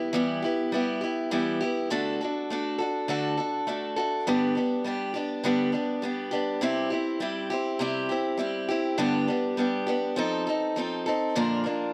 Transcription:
Already playing: B3 E4 G4
0.13 E3 G3 B3 E4 G4
0.42 B3 E4 G4
0.72 G3 B3 E4 G4
1.01 B3 E4 G4
1.31 E3 G3 B3 E4 G4
1.61 B3 E4 G4
1.90 D3 A3 D4 F#4 A4
2.21 D4 F#4 A4
2.50 A3 D4 F#4 A4
2.78 D4 F#4 A4
3.08 D3 A3 D4 F#4 A4
3.37 D4 F#4 A4
3.67 A3 D4 F#4 A4
3.96 D4 F#4 A4
4.27 G2 D3 G3 B3 D4 G4
4.55 G3 B3 D4 G4
4.84 G3 B3 D4 G4
5.14 G3 B3 D4 G4
5.44 G2 D3 G3 B3 D4 G4
5.72 G3 B3 D4 G4
6.02 G3 B3 D4 G4
6.31 G3 B3 D4 G4
6.61 C3 G3 C4 E4 G4
6.90 C4 E4 G4
7.20 G3 C4 E4 G4
7.50 C4 E4 G4
7.79 C3 G3 C4 E4 G4
8.09 C4 E4 G4
8.37 G3 C4 E4 G4
8.69 C4 E4 G4
8.98 G2 D3 G3 B3 D4 G4
9.28 G3 B3 D4 G4
9.57 G3 B3 D4 G4
9.87 G3 B3 D4 G4
10.16 F3 C4 D#4 A4
10.47 C4 D#4 A4
10.76 F3 C4 D#4 A4
11.06 C4 D#4 A4
11.35 A#2 D3 F3 A#3 D4 A#4
11.64 F3 A#3 D4 A#4

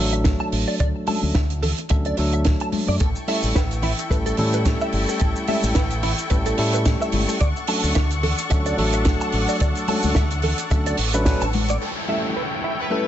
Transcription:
Already playing: A1 F#3 A3 D4 A4
0.13 E5, closed hi-hat
0.24 kick, snare, closed hi-hat
0.40 A5
0.52 A1, open hi-hat
0.68 D5
0.80 D2 D5, kick, closed hi-hat
1.07 F#3 A3 C#4 D4 A4 A5, open hi-hat, high conga
1.23 D2
1.35 D2 E5, kick, snare, closed hi-hat
1.50 closed hi-hat
1.63 A4, open hi-hat, low conga
1.78 closed hi-hat
1.89 D2 F#3 A3 C#4 D4 A4 E5, kick, closed hi-hat
2.05 D5, closed hi-hat
2.17 D2 F#3 A3 D4 A4, open hi-hat
2.32 E5, closed hi-hat
2.44 kick, snare, closed hi-hat
2.60 A5, closed hi-hat
2.72 muted fingered electric bass stroke, open hi-hat, high conga
2.88 F#2 D5
3.00 A1 E4 A4 G5 C#6, kick, closed hi-hat, shaker
3.15 shaker
3.28 G3 A3 C#4 E4 A4 E5, open hi-hat
3.43 A1, shaker
3.55 A1 B4, kick, snare, closed hi-hat, shaker
3.71 closed hi-hat, shaker
3.82 E4, open hi-hat, low conga
3.99 closed hi-hat, shaker
4.10 A1 G3 A3 C#4 E4 A4 B4, kick, closed hi-hat, shaker
4.26 A4, closed hi-hat, shaker
4.37 A2 G3 A3 C#4 E4 A4, open hi-hat, low conga
4.53 B4, closed hi-hat, shaker
4.65 kick, snare, closed hi-hat, shaker
4.81 E5, shaker
4.92 G1, open hi-hat
5.09 A4, shaker
5.19 A1 A4, kick, closed hi-hat, shaker
5.36 shaker
5.47 G3 A3 C#4 E4 A4 E5, open hi-hat, high conga
5.63 A1, shaker
5.75 A1 B4, kick, snare, closed hi-hat, shaker
5.90 closed hi-hat, shaker
6.03 E4, open hi-hat, low conga
6.18 closed hi-hat, shaker
6.30 A1 G3 A3 C#4 E4 A4 B4, kick, closed hi-hat, shaker
6.46 A4, closed hi-hat, shaker
6.57 A2 G3 A3 C#4 E4 A4, open hi-hat
6.73 B4, closed hi-hat, shaker
6.85 kick, snare, closed hi-hat, shaker
7.02 E5, shaker
7.12 G1, open hi-hat, high conga
7.29 A4, shaker
7.40 D2 D4 A4 D5 F#5, kick, closed hi-hat, shaker
7.56 shaker
7.67 F#3 A3 C#4 D4 A4 A5, open hi-hat
7.83 D2, shaker
7.95 D2 E5, kick, snare, closed hi-hat, shaker
8.10 closed hi-hat, shaker
8.23 A4, open hi-hat, low conga
8.38 closed hi-hat, shaker
8.50 D2 F#3 A3 C#4 D4 A4 E5, kick, closed hi-hat, shaker
8.66 D5, closed hi-hat, shaker
8.77 A1 F#3 A3 D4 A4, open hi-hat, low conga
8.93 E5, closed hi-hat, shaker
9.05 kick, snare, closed hi-hat, shaker
9.21 A5, shaker
9.32 A1, open hi-hat
9.48 D5, shaker
9.60 D2 D5, kick, closed hi-hat, shaker
9.75 closed hi-hat, shaker
9.88 F#3 A3 C#4 D4 A4 A5, open hi-hat, high conga
10.03 D2, high conga, shaker
10.15 D2 E5, kick, snare, closed hi-hat, shaker
10.31 closed hi-hat, shaker
10.42 A4, open hi-hat, low conga
10.58 closed hi-hat, shaker
10.71 D2 F#3 A3 C#4 D4 A4 E5, kick, closed hi-hat, shaker
10.86 D5, closed hi-hat, shaker
10.97 A1, open hi-hat
11.13 F#3 A3 C#4 D4 B4 E5, closed hi-hat, shaker
11.25 F#3 A3 C#4 D4 B4, kick, snare, closed hi-hat, shaker
11.41 A1 A5, closed hi-hat, shaker
11.53 open hi-hat, high conga
11.68 D5, closed hi-hat, shaker
11.81 E4 A4 C#5 G5, downlifter
12.08 G3 A3 C#4 E4 A4 E5
12.36 B4
12.64 E4
12.80 B4
12.90 G3 A3 C#4 E4 A4 B4

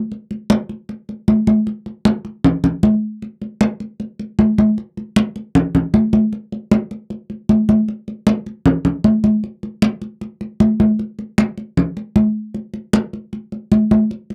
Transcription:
0.12 high conga
0.31 high conga
0.50 high conga
0.69 high conga
0.89 high conga
1.09 high conga
1.28 high conga
1.47 high conga
1.67 high conga
1.86 high conga
2.05 high conga
2.25 high conga
2.44 high conga, low conga
2.64 high conga, low conga
2.83 high conga
3.22 high conga
3.42 high conga
3.61 high conga
3.80 high conga
4.00 high conga
4.19 high conga
4.39 high conga
4.58 high conga
4.78 high conga
4.97 high conga
5.16 high conga
5.36 high conga
5.55 high conga, low conga
5.75 high conga, low conga
5.94 high conga
6.13 high conga
6.33 high conga
6.52 high conga
6.71 high conga
6.91 high conga
7.10 high conga
7.30 high conga
7.49 high conga
7.69 high conga
7.88 high conga
8.08 high conga
8.27 high conga
8.46 high conga
8.66 high conga, low conga
8.85 high conga, low conga
9.04 high conga
9.24 high conga
9.44 high conga
9.63 high conga
9.82 high conga
10.02 high conga
10.21 high conga
10.41 high conga
10.60 high conga
10.80 high conga
10.99 high conga
11.19 high conga
11.38 high conga
11.58 high conga
11.77 high conga, low conga
11.97 high conga
12.16 high conga
12.54 high conga
12.74 high conga
12.93 high conga
13.13 high conga
13.33 high conga
13.52 high conga
13.72 high conga
13.91 high conga
14.11 high conga
14.30 high conga

